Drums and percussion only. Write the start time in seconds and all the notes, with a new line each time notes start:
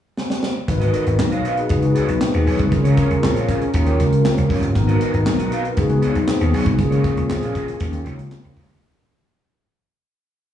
0.18 snare
0.30 snare
0.43 snare
0.68 kick, closed hi-hat
0.81 closed hi-hat
0.94 closed hi-hat
1.06 closed hi-hat
1.19 snare, clap
1.32 closed hi-hat
1.45 closed hi-hat
1.57 closed hi-hat
1.69 kick, closed hi-hat
1.82 closed hi-hat
1.95 closed hi-hat
2.08 closed hi-hat
2.21 snare, clap
2.34 closed hi-hat
2.47 open hi-hat
2.59 kick, closed hi-hat
2.72 kick, closed hi-hat
2.85 closed hi-hat
2.97 kick, closed hi-hat
3.10 closed hi-hat
3.23 snare, clap
3.36 closed hi-hat
3.49 kick, closed hi-hat
3.61 closed hi-hat
3.73 kick, closed hi-hat
3.86 closed hi-hat
4.00 closed hi-hat
4.12 closed hi-hat
4.25 snare, clap
4.38 closed hi-hat
4.50 kick, open hi-hat
4.62 closed hi-hat
4.75 kick, closed hi-hat
4.89 closed hi-hat
5.01 closed hi-hat
5.14 closed hi-hat
5.26 snare, clap
5.39 closed hi-hat
5.52 closed hi-hat
5.65 closed hi-hat
5.77 kick, closed hi-hat
5.89 closed hi-hat
6.02 closed hi-hat
6.15 closed hi-hat
6.28 snare, clap
6.41 closed hi-hat
6.54 open hi-hat
6.66 kick, closed hi-hat
6.79 kick, closed hi-hat
6.92 closed hi-hat
7.04 kick, closed hi-hat
7.17 closed hi-hat
7.30 snare, clap
7.43 closed hi-hat
7.55 kick, closed hi-hat
7.68 closed hi-hat
7.80 kick, closed hi-hat
7.93 closed hi-hat
8.06 closed hi-hat
8.19 closed hi-hat
8.31 snare, clap
8.44 closed hi-hat
8.57 kick, open hi-hat
8.69 closed hi-hat